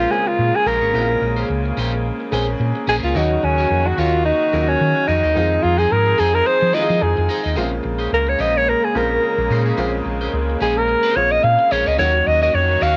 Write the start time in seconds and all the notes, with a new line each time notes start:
Already playing: C#3 G#3 A#3 C4 F4
0.00 C#4 G#4 C5
0.10 C#3 G#3 A#3 C4 C#4 F4 G#4 C5
0.27 F4, muted clean electric guitar stroke
0.39 A#2, muted clean electric guitar stroke
0.55 G#4, muted clean electric guitar stroke
0.66 A#1 C#4 G#4 A#4 C5
0.81 G#1 C#4 G#4 C#5
0.92 A#1 C#3 G#3 A#3 C4 C#4 E4 G#4 C5
1.00 F4
1.09 muted clean electric guitar stroke
1.21 A#1, muted clean electric guitar stroke
1.36 C#4 G#4 C5
1.50 C#2, muted clean electric guitar stroke
1.66 muted clean electric guitar stroke
1.77 A#1 C#4 G#4 C5
1.94 muted clean electric guitar stroke
2.20 muted clean electric guitar stroke
2.31 A#1 C#3 G#3 A#3 C4 C#4 G#4 C5
2.48 muted clean electric guitar stroke
2.60 A#2, muted clean electric guitar stroke
2.75 muted clean electric guitar stroke
2.87 A#1 C#4 G#4 C5
3.03 C#2 C#4 F4 G#4 C#5
3.14 D#2 D#3 F#3 A#3 C#4 D#4 F#4 A#4 C#5
3.31 muted clean electric guitar stroke
3.43 D#2 C#4, muted clean electric guitar stroke
3.58 F#4 A#4 C#5
3.71 F2, muted clean electric guitar stroke
3.86 F#4, muted clean electric guitar stroke
3.98 D#2 F4 F#4 A#4 C#5
4.14 muted clean electric guitar stroke
4.25 D#4
4.41 muted clean electric guitar stroke
4.53 D#2 D#3 F#3 A#3 C#4 F4 F#4 A#4 C#5
4.60 F#4
4.68 C#4, muted clean electric guitar stroke
4.81 D#3, muted clean electric guitar stroke
4.96 muted clean electric guitar stroke
5.07 F2 D#4 F#4 A#4 C#5
5.24 D#2 F#4 A#4 D#5
5.35 F2 D#3 F3 G#3 C4 D#4 F4 G#4 C5
5.51 muted clean electric guitar stroke
5.63 F2 F4, muted clean electric guitar stroke
5.78 D#4 G#4 C5
5.92 G#2 A#4, muted clean electric guitar stroke
6.06 muted clean electric guitar stroke
6.18 F2 D#4 G#4 C5
6.33 A#4, muted clean electric guitar stroke
6.46 C5, muted clean electric guitar stroke
6.61 F3, muted clean electric guitar stroke
6.73 D#3 F3 G#3 C4 D#4 E4 G#4 C5 D#5
6.81 F4
6.89 F3 D#4 G#4 C5
7.01 F2 G#4, muted clean electric guitar stroke
7.17 F2, muted clean electric guitar stroke
7.29 D#4 G#4 C5
7.44 D#2 D#4 G#4 D#5
7.55 A#1 C3 C#3 G#3 A#3 C4 C#4 F4 G#4 C5
7.63 C#3
7.71 muted clean electric guitar stroke
7.83 A#1, muted clean electric guitar stroke
7.99 C#4 G#4 C5
8.12 C#2 A#4, muted clean electric guitar stroke
8.27 C#5, muted clean electric guitar stroke
8.39 A#1 C#4 G#4 C5 D#5
8.55 C#5, muted clean electric guitar stroke
8.69 A#4
8.83 G#4, muted clean electric guitar stroke
8.94 A#1 C#3 G#3 A#3 C4 C#4 F4 G#4 A#4 C5
9.11 muted clean electric guitar stroke
9.23 muted clean electric guitar stroke
9.38 A#1, muted clean electric guitar stroke
9.50 A#2 C#4 G#4 C5
9.66 C#4 G#4 C#5
9.77 A#1 C#3 G#3 A#3 C4 C#4 F4 G#4 C5
9.93 muted clean electric guitar stroke
10.05 A#1, muted clean electric guitar stroke
10.21 C#4 G#4 C5
10.33 C#2, muted clean electric guitar stroke
10.50 muted clean electric guitar stroke
10.61 A#1 C#4 G#4 C5
10.76 A#4, muted clean electric guitar stroke
10.88 muted clean electric guitar stroke
11.03 C#4 G#4 C5
11.15 A#1 C#3 G#3 A#3 C4 F4 C#5, muted clean electric guitar stroke
11.31 D#5, muted clean electric guitar stroke
11.43 A#2 F5, muted clean electric guitar stroke
11.59 muted clean electric guitar stroke
11.71 A#1 C#4 G#4 C5 C#5
11.86 C#2 C#4 G#4 C#5 D#5
11.98 D#2 D#3 F#3 A#3 C#4 F#4 A#4 C#5
12.14 muted clean electric guitar stroke
12.27 D#2 D#5, muted clean electric guitar stroke
12.42 F#4 A#4 C#5 D#5
12.54 F2 C#5, muted clean electric guitar stroke
12.70 muted clean electric guitar stroke
12.81 D#2 F#4 A#4 C#5 F5